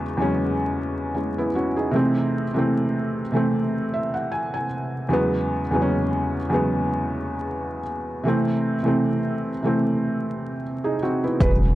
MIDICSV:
0, 0, Header, 1, 5, 480
1, 0, Start_track
1, 0, Tempo, 789474
1, 1176, Time_signature, 4, 2, 24, 8
1, 7144, End_track
2, 0, Start_track
2, 0, Title_t, "Felt piano"
2, 0, Program_c, 0, 0
2, 6939, Note_on_c, 0, 71, 85
2, 6992, Note_off_c, 0, 71, 0
2, 7144, End_track
3, 0, Start_track
3, 0, Title_t, "Felt piano"
3, 0, Program_c, 1, 0
3, 0, Control_c, 1, 64, 127
3, 0, Note_on_c, 1, 40, 81
3, 0, Note_on_c, 1, 49, 71
3, 0, Note_on_c, 1, 54, 63
3, 0, Note_on_c, 1, 56, 73
3, 0, Note_on_c, 1, 59, 83
3, 104, Note_off_c, 1, 40, 0
3, 104, Note_on_c, 1, 40, 76
3, 111, Note_off_c, 1, 49, 0
3, 111, Note_on_c, 1, 49, 60
3, 117, Note_off_c, 1, 54, 0
3, 117, Note_on_c, 1, 54, 60
3, 123, Note_off_c, 1, 56, 0
3, 123, Note_on_c, 1, 56, 62
3, 131, Note_on_c, 1, 61, 86
3, 687, Note_off_c, 1, 61, 0
3, 691, Note_off_c, 1, 56, 0
3, 696, Note_on_c, 1, 61, 50
3, 700, Note_on_c, 1, 56, 50
3, 823, Note_off_c, 1, 61, 0
3, 824, Note_off_c, 1, 56, 0
3, 841, Note_on_c, 1, 64, 64
3, 845, Note_off_c, 1, 59, 0
3, 845, Note_on_c, 1, 59, 58
3, 898, Note_off_c, 1, 40, 0
3, 902, Note_off_c, 1, 49, 0
3, 905, Note_off_c, 1, 54, 0
3, 937, Note_off_c, 1, 64, 0
3, 939, Note_off_c, 1, 59, 0
3, 944, Note_on_c, 1, 66, 63
3, 947, Note_on_c, 1, 61, 58
3, 1066, Note_off_c, 1, 66, 0
3, 1068, Note_off_c, 1, 61, 0
3, 1073, Note_on_c, 1, 68, 51
3, 1078, Note_on_c, 1, 63, 39
3, 1164, Note_on_c, 1, 48, 85
3, 1173, Note_on_c, 1, 52, 68
3, 1181, Note_on_c, 1, 57, 66
3, 1185, Control_c, 1, 64, 0
3, 1191, Note_on_c, 1, 60, 87
3, 1289, Control_c, 1, 64, 127
3, 1299, Note_off_c, 1, 68, 0
3, 1301, Note_off_c, 1, 63, 0
3, 1476, Note_off_c, 1, 48, 0
3, 1481, Note_off_c, 1, 52, 0
3, 1485, Note_off_c, 1, 57, 0
3, 1490, Note_off_c, 1, 60, 0
3, 1545, Note_on_c, 1, 48, 78
3, 1553, Note_on_c, 1, 52, 63
3, 1561, Note_on_c, 1, 57, 65
3, 1571, Note_on_c, 1, 60, 77
3, 1938, Note_off_c, 1, 48, 0
3, 1943, Note_off_c, 1, 52, 0
3, 1947, Note_off_c, 1, 57, 0
3, 1952, Note_off_c, 1, 60, 0
3, 2018, Note_on_c, 1, 48, 76
3, 2027, Note_on_c, 1, 52, 68
3, 2037, Note_on_c, 1, 57, 66
3, 2046, Note_on_c, 1, 60, 78
3, 2393, Note_on_c, 1, 76, 62
3, 2509, Note_off_c, 1, 76, 0
3, 2516, Note_on_c, 1, 78, 60
3, 2612, Note_off_c, 1, 78, 0
3, 2624, Note_on_c, 1, 80, 68
3, 2744, Note_off_c, 1, 80, 0
3, 2759, Note_on_c, 1, 80, 64
3, 2815, Note_off_c, 1, 48, 0
3, 2820, Note_off_c, 1, 52, 0
3, 2825, Note_off_c, 1, 57, 0
3, 2829, Note_off_c, 1, 60, 0
3, 3077, Note_off_c, 1, 80, 0
3, 3093, Note_on_c, 1, 40, 79
3, 3098, Note_on_c, 1, 49, 67
3, 3104, Control_c, 1, 64, 0
3, 3106, Note_on_c, 1, 54, 71
3, 3113, Note_on_c, 1, 56, 66
3, 3121, Note_on_c, 1, 59, 97
3, 3229, Control_c, 1, 64, 127
3, 3401, Note_off_c, 1, 40, 0
3, 3404, Note_off_c, 1, 49, 0
3, 3408, Note_off_c, 1, 54, 0
3, 3411, Note_off_c, 1, 56, 0
3, 3415, Note_off_c, 1, 59, 0
3, 3470, Note_on_c, 1, 40, 76
3, 3476, Note_on_c, 1, 49, 61
3, 3484, Note_on_c, 1, 54, 67
3, 3490, Note_on_c, 1, 56, 71
3, 3497, Note_on_c, 1, 59, 64
3, 3518, Note_off_c, 1, 59, 0
3, 3536, Note_on_c, 1, 61, 89
3, 3861, Note_off_c, 1, 40, 0
3, 3864, Note_off_c, 1, 49, 0
3, 3868, Note_off_c, 1, 54, 0
3, 3871, Note_off_c, 1, 56, 0
3, 3894, Note_off_c, 1, 61, 0
3, 3949, Note_on_c, 1, 40, 77
3, 3954, Note_on_c, 1, 49, 67
3, 3962, Note_on_c, 1, 54, 55
3, 3969, Note_on_c, 1, 56, 66
3, 3976, Note_on_c, 1, 59, 83
3, 4741, Note_off_c, 1, 40, 0
3, 4743, Note_off_c, 1, 49, 0
3, 4747, Note_off_c, 1, 54, 0
3, 4751, Note_off_c, 1, 56, 0
3, 4754, Note_off_c, 1, 59, 0
3, 5007, Note_on_c, 1, 48, 83
3, 5016, Note_on_c, 1, 52, 76
3, 5023, Control_c, 1, 64, 0
3, 5025, Note_on_c, 1, 57, 69
3, 5035, Note_on_c, 1, 60, 88
3, 5140, Control_c, 1, 64, 127
3, 5318, Note_off_c, 1, 48, 0
3, 5323, Note_off_c, 1, 52, 0
3, 5327, Note_off_c, 1, 57, 0
3, 5332, Note_off_c, 1, 60, 0
3, 5368, Note_on_c, 1, 48, 74
3, 5377, Note_on_c, 1, 52, 69
3, 5387, Note_on_c, 1, 57, 67
3, 5396, Note_on_c, 1, 60, 78
3, 5770, Note_off_c, 1, 48, 0
3, 5775, Note_off_c, 1, 52, 0
3, 5779, Note_off_c, 1, 57, 0
3, 5784, Note_off_c, 1, 60, 0
3, 5852, Note_on_c, 1, 48, 63
3, 5861, Note_on_c, 1, 52, 70
3, 5870, Note_on_c, 1, 57, 69
3, 5878, Note_on_c, 1, 60, 77
3, 6461, Note_off_c, 1, 60, 0
3, 6592, Note_on_c, 1, 68, 55
3, 6596, Note_on_c, 1, 63, 52
3, 6652, Note_off_c, 1, 48, 0
3, 6657, Note_off_c, 1, 52, 0
3, 6661, Note_off_c, 1, 57, 0
3, 6692, Note_off_c, 1, 68, 0
3, 6694, Note_off_c, 1, 63, 0
3, 6703, Note_on_c, 1, 66, 60
3, 6706, Note_on_c, 1, 60, 62
3, 6826, Note_off_c, 1, 66, 0
3, 6827, Note_off_c, 1, 60, 0
3, 6832, Note_on_c, 1, 64, 51
3, 6835, Note_on_c, 1, 59, 45
3, 6935, Note_on_c, 1, 49, 73
3, 6942, Control_c, 1, 64, 0
3, 6943, Note_on_c, 1, 54, 72
3, 6953, Note_off_c, 1, 59, 0
3, 6953, Note_on_c, 1, 56, 70
3, 6962, Note_on_c, 1, 59, 80
3, 7052, Control_c, 1, 64, 127
3, 7059, Note_off_c, 1, 64, 0
3, 7140, Note_off_c, 1, 49, 0
3, 7144, Note_off_c, 1, 54, 0
3, 7144, Note_off_c, 1, 56, 0
3, 7144, Note_off_c, 1, 59, 0
3, 7144, End_track
4, 0, Start_track
4, 0, Title_t, "Sub bass"
4, 0, Program_c, 2, 38
4, 6938, Note_on_c, 2, 28, 109
4, 7144, Note_off_c, 2, 28, 0
4, 7144, End_track
5, 0, Start_track
5, 0, Title_t, "Drums"
5, 6934, Note_on_c, 9, 36, 120
5, 6934, Note_on_c, 9, 42, 77
5, 6995, Note_off_c, 9, 36, 0
5, 6995, Note_off_c, 9, 42, 0
5, 7144, End_track
0, 0, End_of_file